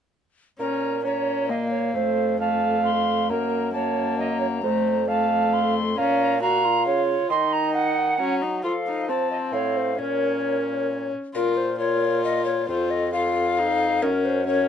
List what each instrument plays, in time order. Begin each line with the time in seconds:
0.59 bassoon A#2, viola C#4, recorder A#4 A#5
1.04 viola C#4, recorder C#5 A#5
1.49 viola A#3, recorder D#5 F5
1.70 recorder C#5
1.94 bassoon F2, viola A3, recorder C5
2.39 viola A3, recorder F5 A5
2.85 recorder C6
3.30 bassoon F#2, viola A#3, recorder A#4 A#5
3.73 viola A#3, recorder C#5 A5
4.18 recorder D#5 A#5
4.40 recorder C#5
4.63 bassoon F2, viola A3, recorder C5
5.08 viola A3, recorder F5 A5
5.53 recorder C6
5.97 bassoon A#2, viola C#4, recorder F5 A#5
6.41 viola F#4, recorder F5 A#5
6.64 viola F4
6.86 bassoon C#3, recorder C#5
7.30 bassoon D#3, viola D#4, recorder D#5 C6
7.52 recorder A#5
7.74 recorder F#5
8.19 bassoon F#3, viola C#4, recorder A#5
8.42 viola D#4
8.63 bassoon F3, viola F4, recorder A4 F5
8.87 viola D#4
9.08 viola C4, recorder C5 A5
9.30 recorder D#5
9.53 bassoon A2, recorder C#5 F5
9.76 recorder C5
9.99 bassoon A#2, viola C#4, recorder A#4 C#5
11.35 bassoon A#2, viola F4, recorder A#4
11.57 recorder C5
11.79 viola F4, recorder A#4 C#5
12.24 recorder D#5
12.45 recorder C#5
12.68 bassoon F2, viola F4, recorder A4 C5
12.91 recorder D#5
13.13 viola F4, recorder A4 F5
13.58 viola D#4
14.02 bassoon F#2, viola C#4, recorder A#4
14.25 recorder C5
14.47 viola C#4, recorder A#4 C#5